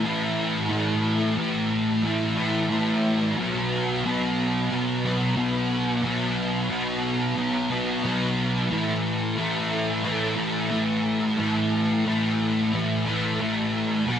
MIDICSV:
0, 0, Header, 1, 2, 480
1, 0, Start_track
1, 0, Tempo, 668151
1, 501, Time_signature, 4, 2, 24, 8
1, 10198, End_track
2, 0, Start_track
2, 0, Title_t, "Distorted electric guitar"
2, 0, Program_c, 0, 30
2, 23, Note_on_c, 0, 45, 63
2, 28, Note_on_c, 0, 52, 62
2, 34, Note_on_c, 0, 57, 70
2, 488, Note_off_c, 0, 45, 0
2, 495, Note_off_c, 0, 52, 0
2, 496, Note_on_c, 0, 45, 95
2, 499, Note_off_c, 0, 57, 0
2, 503, Note_on_c, 0, 52, 100
2, 508, Note_on_c, 0, 57, 98
2, 967, Note_off_c, 0, 45, 0
2, 974, Note_off_c, 0, 52, 0
2, 975, Note_on_c, 0, 45, 81
2, 980, Note_off_c, 0, 57, 0
2, 982, Note_on_c, 0, 52, 81
2, 988, Note_on_c, 0, 57, 95
2, 1446, Note_off_c, 0, 45, 0
2, 1455, Note_off_c, 0, 52, 0
2, 1455, Note_on_c, 0, 45, 92
2, 1461, Note_off_c, 0, 57, 0
2, 1463, Note_on_c, 0, 52, 92
2, 1469, Note_on_c, 0, 57, 94
2, 1683, Note_off_c, 0, 57, 0
2, 1692, Note_on_c, 0, 57, 77
2, 1698, Note_off_c, 0, 52, 0
2, 1706, Note_on_c, 0, 52, 66
2, 1925, Note_off_c, 0, 45, 0
2, 1934, Note_on_c, 0, 45, 71
2, 1936, Note_off_c, 0, 57, 0
2, 1937, Note_off_c, 0, 52, 0
2, 1944, Note_on_c, 0, 57, 75
2, 1945, Note_on_c, 0, 52, 78
2, 2399, Note_off_c, 0, 45, 0
2, 2404, Note_off_c, 0, 52, 0
2, 2404, Note_off_c, 0, 57, 0
2, 2423, Note_on_c, 0, 47, 98
2, 2431, Note_on_c, 0, 54, 94
2, 2440, Note_on_c, 0, 59, 106
2, 2901, Note_off_c, 0, 47, 0
2, 2903, Note_on_c, 0, 47, 79
2, 2904, Note_off_c, 0, 54, 0
2, 2907, Note_on_c, 0, 54, 87
2, 2912, Note_off_c, 0, 59, 0
2, 2915, Note_on_c, 0, 59, 94
2, 3371, Note_off_c, 0, 47, 0
2, 3380, Note_on_c, 0, 47, 93
2, 3386, Note_off_c, 0, 54, 0
2, 3387, Note_off_c, 0, 59, 0
2, 3389, Note_on_c, 0, 54, 87
2, 3395, Note_on_c, 0, 59, 98
2, 3618, Note_off_c, 0, 59, 0
2, 3627, Note_on_c, 0, 59, 70
2, 3634, Note_off_c, 0, 54, 0
2, 3637, Note_on_c, 0, 54, 63
2, 3842, Note_off_c, 0, 47, 0
2, 3851, Note_on_c, 0, 47, 71
2, 3854, Note_off_c, 0, 54, 0
2, 3854, Note_off_c, 0, 59, 0
2, 3857, Note_on_c, 0, 54, 78
2, 3862, Note_on_c, 0, 59, 84
2, 4320, Note_off_c, 0, 47, 0
2, 4328, Note_on_c, 0, 47, 92
2, 4334, Note_off_c, 0, 54, 0
2, 4336, Note_off_c, 0, 59, 0
2, 4336, Note_on_c, 0, 54, 103
2, 4344, Note_on_c, 0, 59, 114
2, 4800, Note_off_c, 0, 47, 0
2, 4809, Note_on_c, 0, 47, 83
2, 4812, Note_off_c, 0, 59, 0
2, 4813, Note_off_c, 0, 54, 0
2, 4816, Note_on_c, 0, 54, 72
2, 4820, Note_on_c, 0, 59, 81
2, 5277, Note_off_c, 0, 47, 0
2, 5286, Note_on_c, 0, 47, 90
2, 5291, Note_off_c, 0, 54, 0
2, 5291, Note_off_c, 0, 59, 0
2, 5294, Note_on_c, 0, 54, 81
2, 5300, Note_on_c, 0, 59, 94
2, 5522, Note_off_c, 0, 59, 0
2, 5530, Note_on_c, 0, 59, 76
2, 5539, Note_off_c, 0, 54, 0
2, 5542, Note_on_c, 0, 54, 65
2, 5757, Note_off_c, 0, 47, 0
2, 5766, Note_on_c, 0, 47, 73
2, 5774, Note_off_c, 0, 59, 0
2, 5776, Note_off_c, 0, 54, 0
2, 5779, Note_on_c, 0, 54, 72
2, 5782, Note_on_c, 0, 59, 67
2, 6233, Note_off_c, 0, 47, 0
2, 6241, Note_off_c, 0, 59, 0
2, 6253, Note_on_c, 0, 45, 91
2, 6255, Note_off_c, 0, 54, 0
2, 6258, Note_on_c, 0, 52, 89
2, 6264, Note_on_c, 0, 57, 99
2, 6723, Note_off_c, 0, 45, 0
2, 6726, Note_on_c, 0, 45, 74
2, 6730, Note_off_c, 0, 52, 0
2, 6733, Note_on_c, 0, 52, 79
2, 6734, Note_off_c, 0, 57, 0
2, 6737, Note_on_c, 0, 57, 88
2, 7195, Note_off_c, 0, 45, 0
2, 7204, Note_on_c, 0, 45, 77
2, 7207, Note_off_c, 0, 52, 0
2, 7207, Note_off_c, 0, 57, 0
2, 7215, Note_on_c, 0, 57, 101
2, 7216, Note_on_c, 0, 52, 90
2, 7434, Note_off_c, 0, 57, 0
2, 7442, Note_on_c, 0, 57, 72
2, 7448, Note_off_c, 0, 52, 0
2, 7456, Note_on_c, 0, 52, 54
2, 7679, Note_off_c, 0, 45, 0
2, 7686, Note_off_c, 0, 52, 0
2, 7687, Note_on_c, 0, 45, 73
2, 7691, Note_off_c, 0, 57, 0
2, 7695, Note_on_c, 0, 52, 73
2, 7699, Note_on_c, 0, 57, 79
2, 8163, Note_off_c, 0, 45, 0
2, 8169, Note_off_c, 0, 52, 0
2, 8172, Note_on_c, 0, 45, 90
2, 8174, Note_off_c, 0, 57, 0
2, 8178, Note_on_c, 0, 52, 108
2, 8183, Note_on_c, 0, 57, 102
2, 8650, Note_off_c, 0, 45, 0
2, 8658, Note_on_c, 0, 45, 78
2, 8659, Note_off_c, 0, 52, 0
2, 8662, Note_off_c, 0, 57, 0
2, 8668, Note_on_c, 0, 52, 81
2, 8671, Note_on_c, 0, 57, 88
2, 9135, Note_off_c, 0, 45, 0
2, 9143, Note_on_c, 0, 45, 83
2, 9144, Note_off_c, 0, 52, 0
2, 9149, Note_off_c, 0, 57, 0
2, 9153, Note_on_c, 0, 52, 85
2, 9157, Note_on_c, 0, 57, 100
2, 9372, Note_off_c, 0, 57, 0
2, 9381, Note_on_c, 0, 57, 79
2, 9390, Note_off_c, 0, 52, 0
2, 9399, Note_on_c, 0, 52, 58
2, 9616, Note_off_c, 0, 45, 0
2, 9622, Note_off_c, 0, 52, 0
2, 9625, Note_on_c, 0, 45, 65
2, 9630, Note_off_c, 0, 57, 0
2, 9630, Note_on_c, 0, 52, 79
2, 9638, Note_on_c, 0, 57, 79
2, 10089, Note_off_c, 0, 45, 0
2, 10092, Note_off_c, 0, 52, 0
2, 10096, Note_off_c, 0, 57, 0
2, 10102, Note_on_c, 0, 47, 90
2, 10111, Note_on_c, 0, 54, 106
2, 10115, Note_on_c, 0, 59, 103
2, 10198, Note_off_c, 0, 47, 0
2, 10198, Note_off_c, 0, 54, 0
2, 10198, Note_off_c, 0, 59, 0
2, 10198, End_track
0, 0, End_of_file